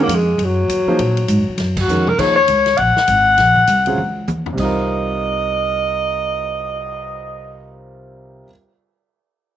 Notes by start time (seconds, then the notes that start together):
0.03 A#3
0.07 F2, hi-hat pedal, ride
0.15 G#3
0.38 F#2, ride
0.45 F#3
0.68 D#2, hi-hat pedal, ride
0.86 F3 A#3 D#4 G#4 C5, muted upright bass stroke
0.99 A#2, ride
1.17 ride
1.28 G#2, hi-hat pedal, ride
1.39 F#2
1.48 D#2
1.58 F#2, snare, ride
1.77 F#4, kick, crash
1.88 F2 D#3 G#3 C#4 F#4 A#4, hi-hat pedal
2.07 A#4, mid tom
2.18 D#2 F3 A#3 D#4 G#4 C5 C#5, kick, crash
2.36 C#5
2.48 C#2, hi-hat pedal, ride
2.66 snare, ride
2.77 A#1 F#5, ride
2.97 muted upright bass stroke, snare
3.08 G#1, hi-hat pedal, ride
3.38 A#1, snare, ride
3.56 kick
3.67 C2, hi-hat pedal, ride
3.86 C#3 F#3 C4 F4 G#4, ride
3.98 C#2, high tom
4.27 D#2, hi-hat pedal, high tom
4.46 floor tom
4.53 C3 G3
4.57 C2 C4 D#4 D#5, kick, crash
4.62 F4 A#4
4.76 cymbal swell